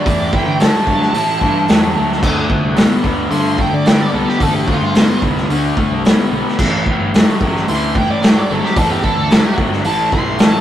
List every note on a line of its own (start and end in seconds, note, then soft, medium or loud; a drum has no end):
0.00 0.33 D5 medium
0.04 0.27 E2 medium
0.04 0.30 A2 medium
0.04 0.30 E3 loud
0.04 kick loud
0.04 open hi-hat medium
0.33 0.57 A2 medium
0.33 0.58 E3 medium
0.33 0.60 G5 medium
0.33 kick medium
0.46 0.67 D3 medium
0.60 0.85 A2 medium
0.60 0.84 F#3 loud
0.60 2.19 A5 loud
0.60 snare loud
0.60 open hi-hat medium
0.87 1.08 G2 medium
0.87 1.12 A2 medium
0.87 1.12 F#3 medium
0.87 kick medium
1.02 snare soft
1.13 1.34 A2 medium
1.13 1.39 A2 medium
1.13 1.39 E3 medium
1.13 open hi-hat medium
1.41 1.66 G2 medium
1.41 1.66 A2 medium
1.41 1.66 E3 medium
1.41 kick medium
1.68 1.93 E2 medium
1.68 1.93 A2 medium
1.68 1.94 F#3 medium
1.68 snare loud
1.68 open hi-hat medium
1.95 2.21 D2 medium
1.95 2.20 A2 medium
1.95 2.20 F#3 medium
2.12 snare soft
2.22 2.44 D2 medium
2.22 2.47 D3 medium
2.22 2.48 A3 medium
2.22 kick loud
2.22 crash loud
2.49 2.74 D3 medium
2.49 2.75 A3 medium
2.49 kick medium
2.63 2.84 C2 medium
2.76 3.01 D3 medium
2.76 3.02 B3 loud
2.76 snare loud
2.76 open hi-hat medium
3.03 3.25 D2 medium
3.03 3.28 D3 medium
3.03 3.29 B3 medium
3.03 kick medium
3.30 3.62 G2 medium
3.30 3.55 D3 medium
3.30 3.56 A3 medium
3.30 3.57 C6 medium
3.30 open hi-hat medium
3.57 3.82 D3 medium
3.57 3.83 A3 medium
3.57 3.73 G5 medium
3.57 kick medium
3.73 4.04 D3 medium
3.73 3.86 D5 medium
3.85 4.10 D3 medium
3.85 4.10 B3 medium
3.85 4.00 G5 loud
3.85 snare loud
3.85 open hi-hat medium
4.01 4.14 D5 medium
4.12 4.24 C2 medium
4.12 4.37 D3 medium
4.12 4.37 B3 medium
4.12 4.27 A4 medium
4.29 4.42 G4 medium
4.29 snare soft
4.40 4.61 A1 medium
4.40 4.64 D3 medium
4.40 4.65 A3 medium
4.40 4.54 A4 medium
4.40 kick loud
4.40 open hi-hat medium
4.54 4.67 G4 loud
4.67 4.92 D3 medium
4.67 4.92 A3 medium
4.67 5.20 F4 loud
4.67 kick medium
4.82 5.02 G2 medium
4.95 5.20 D3 medium
4.95 5.20 B3 medium
4.95 snare loud
4.95 open hi-hat medium
5.22 5.43 C2 medium
5.22 5.47 D3 medium
5.22 5.47 B3 medium
5.22 kick medium
5.37 snare soft
5.49 5.70 D2 medium
5.49 5.74 D3 medium
5.49 5.74 A3 medium
5.49 open hi-hat medium
5.77 6.01 D3 medium
5.77 6.01 A3 medium
5.77 kick medium
5.91 6.11 C2 medium
6.05 6.29 D3 medium
6.05 6.29 B3 medium
6.05 snare loud
6.05 open hi-hat medium
6.31 6.41 B1 loud
6.31 6.55 D3 medium
6.31 6.56 B3 medium
6.48 snare soft
6.59 6.80 A1 medium
6.59 6.83 A2 medium
6.59 6.84 E3 medium
6.59 kick loud
6.59 crash loud
6.86 7.11 A2 medium
6.86 7.11 E3 medium
6.86 kick medium
7.00 7.20 G1 medium
7.14 7.38 A2 medium
7.14 7.38 F#3 loud
7.14 snare loud
7.14 open hi-hat medium
7.41 7.61 A1 loud
7.41 7.65 A2 medium
7.41 7.65 F#3 medium
7.41 kick medium
7.56 snare soft
7.68 7.99 D2 medium
7.68 7.92 A2 medium
7.68 7.92 E3 medium
7.68 7.94 C6 loud
7.68 open hi-hat medium
7.95 8.19 A2 medium
7.95 8.20 E3 medium
7.95 8.09 G5 medium
7.95 kick medium
8.10 8.40 A2 medium
8.10 8.22 D5 medium
8.22 8.46 A2 medium
8.22 8.46 F#3 medium
8.22 8.36 G5 loud
8.22 snare loud
8.22 open hi-hat medium
8.38 8.50 D5 medium
8.50 8.60 G1 medium
8.50 8.74 A2 medium
8.50 8.74 F#3 medium
8.50 8.63 A4 medium
8.65 8.77 G4 loud
8.65 snare soft
8.76 8.97 E2 medium
8.76 9.01 A2 medium
8.76 9.01 E3 loud
8.76 8.90 A4 medium
8.76 kick loud
8.76 open hi-hat medium
8.93 9.03 G4 loud
9.03 9.28 A2 medium
9.03 9.28 E3 medium
9.03 9.56 A4 medium
9.03 kick medium
9.17 9.38 D2 medium
9.30 9.55 A2 medium
9.30 9.55 F#3 loud
9.30 snare loud
9.30 open hi-hat medium
9.57 9.78 G1 medium
9.57 9.82 A2 medium
9.57 9.82 F#3 medium
9.57 kick medium
9.73 snare soft
9.84 10.06 A1 medium
9.84 10.09 A2 medium
9.84 10.09 E3 medium
9.84 10.12 A5 loud
9.84 open hi-hat medium
10.12 10.37 B1 medium
10.12 10.36 A2 medium
10.12 10.37 E3 medium
10.12 10.39 C6 loud
10.12 kick medium
10.38 10.61 A1 medium
10.38 10.61 A2 medium
10.38 10.61 F#3 medium
10.38 10.61 A5 medium
10.38 snare loud
10.38 open hi-hat medium